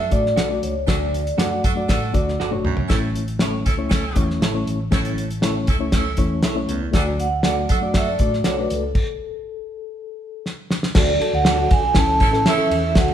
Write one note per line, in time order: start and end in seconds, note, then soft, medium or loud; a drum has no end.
0.00 0.22 D4 medium
0.00 0.22 F#4 medium
0.00 0.22 A4 medium
0.00 0.13 E5 medium
0.10 0.33 A2 medium
0.10 0.35 A3 medium
0.10 0.36 D4 medium
0.10 0.36 F#4 medium
0.10 0.36 D5 medium
0.10 0.59 D5 medium
0.10 kick medium
0.10 closed hi-hat medium
0.26 snare soft
0.36 0.58 B1 medium
0.36 0.46 F#4 medium
0.36 0.47 A4 medium
0.36 0.47 D5 medium
0.36 snare loud
0.36 closed hi-hat medium
0.49 0.74 A3 medium
0.49 0.74 D4 medium
0.49 0.74 F#4 medium
0.49 0.75 D5 medium
0.63 0.84 C#2 medium
0.63 0.75 C#5 medium
0.63 closed hi-hat medium
0.87 1.23 D2 medium
0.87 1.30 D2 medium
0.87 1.20 A3 medium
0.87 0.95 D4 medium
0.87 1.20 D4 medium
0.87 1.21 F#4 medium
0.87 0.96 F#4 medium
0.87 0.95 A4 loud
0.87 1.40 D5 medium
0.87 1.21 D5 medium
0.87 kick medium
0.87 snare loud
0.87 closed hi-hat medium
1.14 closed hi-hat medium
1.27 closed hi-hat soft
1.37 1.59 F#2 medium
1.37 1.62 A3 medium
1.37 1.63 D4 medium
1.37 1.48 F#4 medium
1.37 1.63 F#4 medium
1.37 1.48 A4 medium
1.37 1.63 D5 medium
1.37 1.48 D5 medium
1.37 2.11 F#5 medium
1.37 snare loud
1.37 closed hi-hat medium
1.63 1.85 F#2 medium
1.63 1.71 D4 medium
1.63 1.72 F#4 medium
1.63 1.72 A4 medium
1.63 kick medium
1.63 closed hi-hat medium
1.75 2.00 A3 medium
1.75 2.01 D4 medium
1.75 2.01 F#4 medium
1.75 2.01 D5 medium
1.88 2.10 A2 loud
1.88 2.25 D4 medium
1.88 2.25 F#4 medium
1.88 2.25 A4 loud
1.88 kick medium
1.88 snare medium
1.88 closed hi-hat medium
2.12 2.35 D2 medium
2.12 2.38 A3 medium
2.12 2.38 D4 medium
2.12 2.38 F#4 medium
2.12 2.39 D5 medium
2.12 kick medium
2.12 closed hi-hat medium
2.28 snare soft
2.40 2.61 F#1 medium
2.40 2.49 F#4 medium
2.40 2.50 A4 medium
2.40 2.50 D5 medium
2.40 snare medium
2.51 2.76 A3 medium
2.51 2.76 D4 medium
2.51 2.76 F#4 medium
2.51 2.77 C#5 medium
2.51 high tom medium
2.64 2.86 G#1 medium
2.64 2.85 F#2 medium
2.64 mid tom medium
2.77 floor tom medium
2.88 3.62 A1 medium
2.88 3.10 A2 medium
2.88 3.22 A3 medium
2.88 2.97 C#4 medium
2.88 3.23 C#4 medium
2.88 2.97 E4 medium
2.88 3.23 E4 medium
2.88 2.97 A4 medium
2.88 3.23 C#5 medium
2.88 kick loud
2.88 snare medium
2.88 closed hi-hat medium
3.15 closed hi-hat medium
3.28 closed hi-hat soft
3.39 3.65 A3 medium
3.39 3.65 C#4 medium
3.39 3.65 E4 medium
3.39 3.51 E4 medium
3.39 3.51 A4 medium
3.39 3.65 C#5 medium
3.39 3.51 C#5 medium
3.39 snare loud
3.39 closed hi-hat medium
3.66 3.87 C#2 medium
3.66 3.74 C#4 medium
3.66 3.74 E4 medium
3.66 3.74 A4 medium
3.66 kick medium
3.66 closed hi-hat medium
3.77 4.03 A3 medium
3.77 4.03 C#4 medium
3.77 4.03 E4 medium
3.77 4.03 C#5 medium
3.90 4.12 C#2 medium
3.90 4.26 C#4 medium
3.90 4.27 E4 medium
3.90 4.27 A4 loud
3.90 kick medium
3.90 snare medium
3.90 closed hi-hat medium
4.15 4.38 E2 medium
4.15 4.40 A3 medium
4.15 4.41 C#4 medium
4.15 4.41 E4 medium
4.15 4.41 C#5 medium
4.15 kick medium
4.15 closed hi-hat medium
4.30 snare soft
4.40 4.62 A1 medium
4.40 4.51 E4 medium
4.40 4.52 A4 medium
4.40 4.52 C#5 medium
4.40 snare loud
4.40 closed hi-hat medium
4.53 4.78 A3 medium
4.53 4.79 C#4 medium
4.53 4.79 E4 medium
4.53 4.79 C#5 medium
4.67 4.88 A1 medium
4.67 closed hi-hat medium
4.91 5.64 A1 loud
4.91 5.28 A2 medium
4.91 5.24 A3 medium
4.91 5.24 C#4 medium
4.91 5.00 C#4 medium
4.91 5.25 E4 medium
4.91 5.00 E4 medium
4.91 5.00 A4 medium
4.91 5.25 C#5 medium
4.91 kick loud
4.91 snare loud
4.91 closed hi-hat medium
5.05 closed hi-hat soft
5.18 closed hi-hat medium
5.31 closed hi-hat medium
5.41 5.66 A3 medium
5.41 5.67 C#4 medium
5.41 5.67 E4 medium
5.41 5.52 E4 medium
5.41 5.53 A4 medium
5.41 5.67 C#5 medium
5.41 5.53 C#5 medium
5.41 snare loud
5.41 closed hi-hat medium
5.67 5.89 C#2 medium
5.67 5.76 C#4 medium
5.67 5.76 E4 medium
5.67 5.76 A4 medium
5.67 kick medium
5.67 closed hi-hat medium
5.79 6.04 A3 medium
5.79 6.05 C#4 medium
5.79 6.05 E4 medium
5.79 6.05 C#5 medium
5.92 6.14 C#2 medium
5.92 6.29 C#4 medium
5.92 6.29 E4 medium
5.92 6.29 A4 loud
5.92 kick medium
5.92 snare loud
5.92 closed hi-hat medium
6.17 6.39 E2 medium
6.17 6.42 A3 medium
6.17 6.43 C#4 medium
6.17 6.43 E4 medium
6.17 6.43 C#5 medium
6.17 kick medium
6.17 closed hi-hat medium
6.43 6.64 B1 medium
6.43 6.53 E4 medium
6.43 6.54 A4 medium
6.43 6.54 C#5 medium
6.43 snare loud
6.43 closed hi-hat medium
6.55 6.80 A3 medium
6.55 6.80 C#4 medium
6.55 6.80 E4 medium
6.55 6.81 C#5 medium
6.68 6.89 C#2 medium
6.68 6.89 E2 medium
6.68 closed hi-hat medium
6.92 7.66 D2 loud
6.92 7.14 D2 medium
6.92 7.25 A3 medium
6.92 7.26 D4 medium
6.92 7.03 D4 medium
6.92 7.26 F#4 medium
6.92 7.02 F#4 medium
6.92 7.02 A4 loud
6.92 7.27 D5 medium
6.92 kick medium
6.92 snare loud
6.92 closed hi-hat medium
7.20 7.97 F#5 loud
7.20 closed hi-hat medium
7.43 7.68 A3 medium
7.43 7.69 D4 medium
7.43 7.69 F#4 medium
7.43 7.54 F#4 medium
7.43 7.55 A4 medium
7.43 7.69 D5 medium
7.43 7.55 D5 medium
7.43 snare loud
7.43 closed hi-hat medium
7.69 7.90 F#2 medium
7.69 7.77 D4 medium
7.69 7.78 F#4 medium
7.69 7.78 A4 loud
7.69 kick medium
7.69 closed hi-hat medium
7.81 8.06 A3 medium
7.81 8.06 D4 medium
7.81 8.07 F#4 medium
7.81 8.07 D5 medium
7.94 8.16 F#2 medium
7.94 8.31 D4 medium
7.94 8.31 F#4 medium
7.94 8.31 A4 loud
7.94 8.07 E5 medium
7.94 kick medium
7.94 snare medium
7.94 closed hi-hat medium
8.08 8.47 D5 medium
8.19 8.40 A2 medium
8.19 8.44 A3 medium
8.19 8.45 D4 medium
8.19 8.45 F#4 medium
8.19 8.45 D5 medium
8.19 kick medium
8.19 closed hi-hat medium
8.33 snare soft
8.44 8.66 B1 medium
8.44 8.54 F#4 medium
8.44 8.55 A4 medium
8.44 8.59 C#5 medium
8.44 8.55 D5 medium
8.44 snare loud
8.44 closed hi-hat medium
8.57 8.82 A3 medium
8.57 8.82 D4 medium
8.57 8.82 F#4 medium
8.57 8.71 B4 medium
8.57 8.83 D5 medium
8.70 8.91 C#2 medium
8.70 10.44 A4 medium
8.70 closed hi-hat medium
8.95 kick loud
8.95 crash medium
10.46 snare medium
10.71 snare medium
10.83 snare medium
10.95 11.16 D2 loud
10.95 11.16 D2 medium
10.95 11.95 F#3 medium
10.95 11.11 D4 medium
10.95 11.95 D4 medium
10.95 11.12 F#4 medium
10.95 12.94 A4 medium
10.95 11.12 A4 medium
10.95 11.36 D5 medium
10.95 kick loud
10.95 snare loud
10.95 crash loud
11.20 11.45 D4 medium
11.20 11.45 F#4 medium
11.20 11.46 A4 medium
11.20 ride medium
11.34 11.65 D2 loud
11.34 11.73 F#5 loud
11.45 11.55 F#4 medium
11.45 11.56 A4 medium
11.45 11.56 D5 medium
11.45 snare loud
11.45 ride medium
11.56 11.82 D4 medium
11.56 11.82 F#4 medium
11.56 11.83 A4 medium
11.71 11.92 B1 loud
11.71 11.95 G#5 loud
11.71 kick loud
11.71 ride medium
11.94 12.17 C#2 loud
11.94 12.95 E3 medium
11.94 12.19 C#4 medium
11.94 12.06 C#4 medium
11.94 12.95 C#4 medium
11.94 12.20 E4 medium
11.94 12.06 E4 medium
11.94 12.06 A4 medium
11.94 12.20 A4 medium
11.94 12.48 A5 loud
11.94 kick medium
11.94 snare loud
11.94 ride medium
12.20 12.42 A1 medium
12.20 12.29 C#4 medium
12.20 12.29 E4 medium
12.20 12.29 A4 loud
12.20 kick medium
12.20 ride medium
12.31 12.49 C#4 medium
12.31 12.49 E4 medium
12.31 12.50 A4 medium
12.31 snare soft
12.46 12.94 C#4 medium
12.46 12.56 E4 medium
12.46 12.94 E4 loud
12.46 12.94 A4 loud
12.46 12.56 A4 loud
12.46 12.56 C#5 loud
12.46 12.94 E5 loud
12.46 snare loud
12.46 ride medium
12.57 12.82 C#4 medium
12.57 12.82 E4 medium
12.57 12.83 A4 medium
12.57 muted picked electric bass stroke soft
12.71 12.96 E2 medium
12.71 ride medium
12.94 13.14 D2 loud
12.94 13.14 D2 medium
12.94 13.14 F#3 medium
12.94 13.11 D4 medium
12.94 13.14 D4 medium
12.94 13.12 F#4 medium
12.94 13.14 A4 medium
12.94 13.12 A4 medium
12.94 kick loud
12.94 snare loud
12.94 ride medium
12.98 13.14 F#5 loud
13.08 ride soft